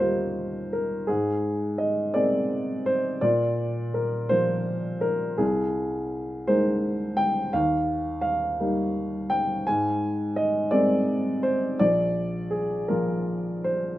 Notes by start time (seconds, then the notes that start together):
Already playing: D#2 A#4 D#5
0.00 G3 A#3 F4 C5
0.73 A#4
1.07 G#2 G#4
1.78 D#5
2.14 G#3 A#3 C4 D5
2.86 C5
3.21 A#2 D5
3.94 A#4
4.29 F3 A#3 F4 C5
5.01 A#4
5.38 C2 G#4
6.47 G#3 A#3 D#4 C5
7.17 G5
7.53 D#2 F5
8.21 F5
8.60 G3 A#3 D#4
9.30 G5
9.67 G#2 G#5
10.36 D#5
10.71 G#3 A#3 C4 D5
11.43 C5
11.79 A#1 D5
12.51 G#4
12.88 F3 A#3 F4 A#4
13.64 C5